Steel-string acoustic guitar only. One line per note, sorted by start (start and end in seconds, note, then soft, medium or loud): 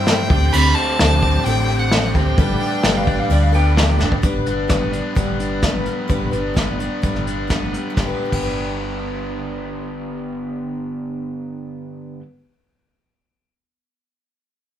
0.00 0.32 G3 soft
0.00 0.31 C4 soft
0.00 0.30 E4 medium
0.00 0.29 C5 medium
0.29 0.53 C4 soft
0.29 0.54 G4 medium
0.29 0.53 A4 medium
0.53 0.98 D3 medium
0.53 1.00 C4 medium
0.53 1.01 G4 medium
0.53 1.01 A4 loud
0.99 1.44 D3 medium
0.99 1.45 C4 medium
0.99 1.47 G4 medium
0.99 1.48 A4 medium
1.46 1.69 D3 medium
1.46 1.69 C4 medium
1.46 1.68 G4 medium
1.46 1.67 A4 medium
1.68 2.16 C4 soft
1.68 2.16 G4 medium
1.68 2.13 A4 medium
2.14 2.39 C4 soft
2.14 2.38 G4 medium
2.14 2.37 A4 medium
2.38 2.82 G3 medium
2.38 2.84 B3 medium
2.38 2.83 D4 medium
2.38 2.84 A4 medium
2.83 3.29 G3 medium
2.83 3.31 B3 medium
2.83 3.30 D4 medium
2.83 3.31 A4 medium
3.30 3.53 G3 medium
3.30 3.53 B3 medium
3.30 3.54 D4 medium
3.30 3.51 A4 medium
3.52 4.00 B3 medium
3.52 4.01 D4 medium
3.52 3.98 A4 medium
3.99 4.22 B3 medium
3.99 4.22 D4 medium
3.99 4.22 A4 medium
4.22 4.68 G3 medium
4.22 4.69 B3 medium
4.22 4.69 D4 medium
4.22 4.71 B4 medium
4.68 5.15 G3 medium
4.68 5.17 B3 medium
4.68 5.16 D4 medium
4.68 5.17 B4 medium
5.15 5.62 G3 medium
5.15 5.64 B3 medium
5.15 5.63 D4 medium
5.15 5.65 B4 medium
5.62 6.07 G3 medium
5.62 6.09 B3 medium
5.62 6.09 D4 medium
5.62 6.10 B4 medium
6.08 6.32 G3 medium
6.08 6.31 B3 medium
6.08 6.33 D4 medium
6.08 6.30 B4 medium
6.31 6.55 B3 soft
6.31 6.54 D4 soft
6.31 6.55 B4 soft
6.54 7.01 G3 medium
6.54 7.03 B3 medium
6.54 7.02 D4 medium
6.54 7.03 B4 medium
7.02 7.46 G3 medium
7.02 7.49 B3 medium
7.02 7.48 D4 medium
7.02 7.51 B4 medium
7.48 7.89 G3 medium
7.48 7.97 B3 medium
7.48 7.95 D4 medium
7.52 7.98 B4 medium
7.90 8.25 G3 medium
7.97 8.32 D4 medium
8.02 8.37 B3 medium
8.07 8.42 B4 medium
8.26 12.14 G3 medium
8.32 12.21 D4 medium
8.37 12.26 B3 medium
8.43 12.31 B4 medium